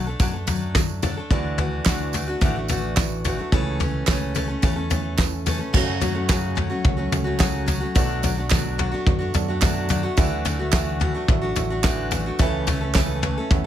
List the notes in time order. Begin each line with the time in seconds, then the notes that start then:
Already playing: B1
0.07 A3 D4 A4
0.20 F#2 B2 F#3 A3 D4 A4, kick, floor tom, tambourine
0.33 A3 D4 A4
0.47 F#3 A3 D4 A4, floor tom, tambourine
0.75 kick, snare, floor tom, tambourine
1.02 F#3 A3 D4 A4, floor tom, tambourine
1.17 A3 D4 A4
1.30 D2 D3 E3 A3 D4 E4 F#4 D5, kick, floor tom
1.58 E3 A3 D4 F#4, floor tom
1.86 D2 D3 E3 A3 D4 E4 F#4 D5, kick, snare, clap, floor tom, tambourine
2.13 E3 A3 D4 F#4, floor tom, tambourine
2.28 A3 D4 F#4
2.41 A1 D3 E3 A3 D4 E4 F#4 E5, kick, floor tom, tambourine
2.56 A3 D4 F#4
2.68 E3 A3 D4 E4 F#4 D5, floor tom, tambourine
2.96 A3 E4 F#4 D5, kick, snare, clap, floor tom, tambourine
3.24 E3 A3 D4 F#4, floor tom, tambourine
3.38 A3 D4 F#4
3.52 C#2 C#3 E3 A3 C#4 E4 A4 C#5, kick, floor tom, tambourine
3.80 E3 A3 C#4 A4, floor tom, tambourine
4.07 C#2 C#3 E3 A3 C#4 E4 A4 C#5, kick, snare, clap, floor tom, tambourine
4.34 E3 A3 C#4 A4, floor tom, tambourine
4.48 A3 C#4 A4
4.62 E2 C#3 E3 A3 C#4 E4 A4 C#5, kick, floor tom, tambourine
4.76 A3 C#4 A4
4.90 E3 A3 C#4 E4 A4 C#5, floor tom, tambourine
5.18 A3 C#4 E4 A4 B4, kick, snare, clap, floor tom, tambourine
5.46 E3 A3 C#4 A4, floor tom, tambourine
5.59 A3 C#4 A4
5.73 F#1 F#2 C#3 F#3 A3 C#4 F#4 A4 C#5, kick, floor tom, crash, tambourine
6.01 F#3 A3 C#4 F#4, floor tom, tambourine
6.14 F#3 A3 C#4 F#4
6.28 F#2 C#3 F#3 A3 C#4 F#4 A4 C#5, kick, snare, clap, floor tom, tambourine
6.55 F#3 A3 C#4 F#4, floor tom
6.70 F#3 A3 C#4 F#4
6.84 C#2 F#3 A3 C#4 A4 C#5, kick, floor tom
6.97 F#3 A3 C#4 F#4
7.12 C#2 F#3 A3 C#4 A4 C#5, floor tom, tambourine
7.24 F#3 A3 C#4 F#4
7.39 F#2 C#3 F#3 A3 C#4 F#4 A4 C#5, kick, snare, clap, floor tom, tambourine
7.66 F#3 A3 C#4 F#4, floor tom, tambourine
7.80 F#3 A3 C#4 F#4
7.95 B1 B2 F#3 A3 B3 D4 F#4 A4 D5, kick, floor tom, tambourine
8.22 F#3 A3 D4 F#4, floor tom, tambourine
8.37 A3 D4 F#4
8.50 B2 F#3 A3 B3 D4 F#4 A4 D5, kick, snare, clap, floor tom, tambourine
8.78 F#3 A3 D4 F#4, floor tom
8.92 A3 D4 F#4
9.06 F#2 F#3 B3 D4 A4 D5, kick, floor tom
9.19 A3 D4 F#4
9.34 F#2 F#3 B3 D4 A4 D5 A5, floor tom, tambourine
9.48 A3 D4 F#4 F#5
9.61 B2 F#3 A3 B3 D4 F#4 A4 D5 E5, kick, snare, clap, floor tom, tambourine
9.89 F#3 A3 D4 F#4 D5, floor tom, tambourine
10.03 A3 D4 F#4
10.17 D2 D3 E3 F#3 A3 D4 E4 F#4 A4 E5, kick, floor tom, tambourine
10.45 E3 A3 D4 F#4, floor tom, tambourine
10.59 A3 D4 F#4
10.73 D3 E3 F#3 A3 D4 E4 F#4 A4 E5, kick, snare, clap, floor tom, tambourine
11.00 E3 A3 D4 F#4, floor tom
11.14 A3 D4 F#4
11.28 A1 F#3 D4 E4 A4 E5, kick, floor tom
11.41 A3 D4 F#4
11.56 A1 F#3 D4 E4 A4 E5, floor tom, tambourine
11.70 A3 D4 F#4
11.83 D3 E3 F#3 A3 D4 E4 F#4 A4 E5, kick, snare, clap, floor tom, tambourine
12.11 E3 A3 D4 F#4, floor tom, tambourine
12.26 A3 D4 F#4
12.39 C#2 C#3 E3 A3 C#4 E4 A4 C#5 E5, kick, floor tom, tambourine
12.67 E3 A3 C#4 A4, floor tom, tambourine
12.81 A3 C#4 A4
12.94 C#3 E3 A3 C#4 E4 A4 C#5 E5, kick, snare, clap, floor tom, tambourine
13.22 E3 A3 C#4 A4 A5, floor tom
13.38 A3 C#4 A4
13.51 E2 A3 C#4 E4 C#5 E5 F#5, kick, floor tom, tambourine